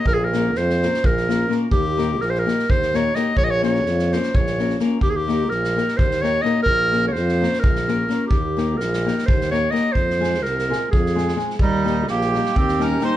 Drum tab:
SD |--o-oooo-oo-o-|--o-oooo-oo-o-|--oooooo-oooo-|--o-oooo-oo-o-|
BD |o-------o-----|o-------o-----|o-------o-----|o-------o-----|

SD |--o-oooo-oo-o-|--o-oooo-oo-o-|-oooooo--ooooo|--o-oooo-oo-o-|
BD |o-------o-----|o-------o-----|o-------o-----|o-------o-----|